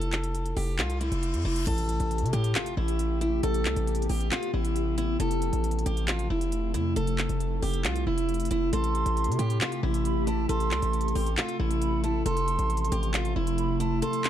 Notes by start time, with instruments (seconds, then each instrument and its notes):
Already playing: 808-style bass F1, steel-string acoustic guitar A4
0.01 closed hi-hat
0.12 clap, closed hi-hat
0.24 closed hi-hat
0.35 closed hi-hat
0.46 closed hi-hat
0.57 808-style bass F1, steel-string acoustic guitar G4, open hi-hat
0.79 808-style bass C2, steel-string acoustic guitar F4, clap, closed hi-hat, reverse cymbal
0.90 closed hi-hat
1.01 steel-string acoustic guitar E4, closed hi-hat
1.12 808-style bass F1, closed hi-hat
1.23 closed hi-hat
1.34 808-style bass F2, closed hi-hat
1.45 808-style bass F1, steel-string acoustic guitar E4
1.56 closed hi-hat
1.67 808-style bass A1, ambient pad C3 A3 G4, steel-string acoustic guitar A4, closed hi-hat, crash, impact
1.78 closed hi-hat
1.89 closed hi-hat
2.00 808-style bass A1, closed hi-hat
2.11 closed hi-hat
2.18 808-style bass C3, closed hi-hat
2.26 closed hi-hat
2.33 808-style bass A2, steel-string acoustic guitar G4, closed hi-hat
2.44 closed hi-hat
2.55 steel-string acoustic guitar F4, clap, closed hi-hat
2.66 closed hi-hat
2.77 808-style bass A1, steel-string acoustic guitar E4
2.88 closed hi-hat
2.99 closed hi-hat
3.21 steel-string acoustic guitar E4, closed hi-hat
3.43 808-style bass A1, ambient pad B3, steel-string acoustic guitar A4, closed hi-hat
3.54 closed hi-hat
3.65 808-style bass C2, clap, closed hi-hat
3.76 808-style bass A1, closed hi-hat
3.87 closed hi-hat
3.95 closed hi-hat
4.02 closed hi-hat
4.09 808-style bass A1, steel-string acoustic guitar G4, open hi-hat
4.21 closed hi-hat
4.32 steel-string acoustic guitar F4, clap, closed hi-hat
4.43 closed hi-hat
4.54 808-style bass A1, steel-string acoustic guitar E4
4.65 closed hi-hat
4.76 closed hi-hat
4.98 steel-string acoustic guitar E4, closed hi-hat
5.20 808-style bass F1, ambient pad F3 A3, steel-string acoustic guitar A4, closed hi-hat
5.31 closed hi-hat
5.42 closed hi-hat
5.53 808-style bass A1, closed hi-hat
5.64 closed hi-hat
5.71 closed hi-hat
5.79 closed hi-hat
5.86 808-style bass A1, steel-string acoustic guitar G4, closed hi-hat
5.97 closed hi-hat
6.08 steel-string acoustic guitar F4, clap, closed hi-hat
6.19 closed hi-hat
6.30 808-style bass F1, steel-string acoustic guitar E4
6.41 closed hi-hat
6.52 closed hi-hat
6.74 808-style bass F2, steel-string acoustic guitar E4, closed hi-hat
6.96 808-style bass F1, ambient pad E4, steel-string acoustic guitar A4, closed hi-hat
7.07 closed hi-hat
7.18 clap, closed hi-hat
7.29 808-style bass F1, closed hi-hat
7.40 closed hi-hat
7.62 808-style bass F1, steel-string acoustic guitar G4, open hi-hat
7.74 closed hi-hat
7.84 808-style bass C2, steel-string acoustic guitar F4, clap, closed hi-hat
7.96 closed hi-hat
8.07 808-style bass F1, steel-string acoustic guitar E4
8.18 closed hi-hat
8.29 closed hi-hat
8.34 closed hi-hat
8.40 closed hi-hat
8.45 closed hi-hat
8.51 808-style bass F1, steel-string acoustic guitar E4, closed hi-hat
8.73 808-style bass A1, ambient pad A3 G4, steel-string acoustic guitar A4, flute C6, closed hi-hat
8.84 closed hi-hat
8.95 closed hi-hat
9.06 808-style bass A1, closed hi-hat
9.17 closed hi-hat
9.24 808-style bass C3, closed hi-hat
9.32 closed hi-hat
9.39 808-style bass A2, steel-string acoustic guitar G4, closed hi-hat
9.50 closed hi-hat
9.61 steel-string acoustic guitar F4, clap, closed hi-hat
9.72 closed hi-hat
9.83 808-style bass A1, steel-string acoustic guitar E4
9.94 closed hi-hat
10.05 flute B5, closed hi-hat
10.27 steel-string acoustic guitar E4, flute A5, closed hi-hat
10.49 808-style bass A1, ambient pad A4, steel-string acoustic guitar A4, flute C6, closed hi-hat
10.60 closed hi-hat
10.71 808-style bass C2, clap, closed hi-hat
10.82 808-style bass A1, closed hi-hat
10.93 closed hi-hat
11.01 closed hi-hat
11.08 closed hi-hat
11.15 808-style bass A1, steel-string acoustic guitar G4, open hi-hat
11.26 closed hi-hat
11.37 steel-string acoustic guitar F4, clap, closed hi-hat
11.49 closed hi-hat
11.60 808-style bass A1, steel-string acoustic guitar E4
11.71 closed hi-hat
11.82 flute B5, closed hi-hat
12.04 steel-string acoustic guitar E4, flute A5, closed hi-hat
12.26 808-style bass F1, ambient pad C3 F3 A3, steel-string acoustic guitar A4, flute C6, closed hi-hat
12.37 closed hi-hat
12.48 closed hi-hat
12.59 808-style bass A1, closed hi-hat
12.70 closed hi-hat
12.77 closed hi-hat
12.85 closed hi-hat
12.92 808-style bass A1, steel-string acoustic guitar G4, closed hi-hat
13.03 closed hi-hat
13.14 steel-string acoustic guitar F4, clap, closed hi-hat
13.25 closed hi-hat
13.36 808-style bass F1, steel-string acoustic guitar E4
13.47 closed hi-hat
13.58 flute B5, closed hi-hat
13.80 steel-string acoustic guitar E4, flute A5, closed hi-hat
14.02 ambient pad G4, steel-string acoustic guitar A4, flute C6, closed hi-hat
14.13 closed hi-hat
14.24 clap, closed hi-hat